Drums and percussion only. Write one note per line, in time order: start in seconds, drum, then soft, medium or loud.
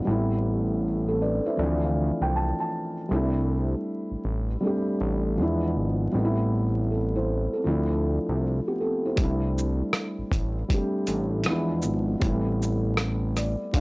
9.17 kick medium
9.17 closed hi-hat medium
9.58 shaker soft
9.93 cross-stick loud
9.93 closed hi-hat medium
10.32 kick medium
10.32 closed hi-hat soft
10.32 shaker medium
10.70 kick medium
10.70 closed hi-hat medium
11.07 closed hi-hat soft
11.07 shaker soft
11.44 cross-stick loud
11.44 closed hi-hat medium
11.82 shaker medium
12.22 kick medium
12.22 closed hi-hat medium
12.62 shaker soft
12.97 cross-stick loud
12.97 closed hi-hat medium
13.37 cross-stick soft
13.37 closed hi-hat soft
13.37 shaker medium
13.74 kick medium
13.74 closed hi-hat medium